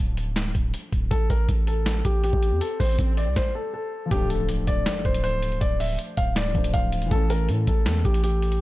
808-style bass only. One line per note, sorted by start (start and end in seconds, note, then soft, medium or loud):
0.00 0.53 D1 loud
0.55 0.73 D1 loud
0.93 1.10 D1 loud
1.11 1.29 A1 loud
1.30 1.48 A1 loud
1.49 2.03 A1 loud
2.05 2.32 A1 loud
2.33 2.53 A1 loud
2.52 2.61 E2 loud
2.80 2.98 A1 loud
2.99 3.28 A1 loud
3.27 3.36 C2 loud
4.11 4.65 D1 loud
4.67 4.85 D1 loud
5.05 5.59 D1 loud
5.61 5.97 D1 loud
6.17 6.53 D1 loud
6.55 6.73 D1 loud
6.74 7.03 D1 loud
7.02 7.11 E1 loud
7.11 7.50 A1 loud
7.49 7.67 A2 loud
7.67 7.88 A1 loud
7.86 8.04 E2 loud
8.05 8.59 A1 loud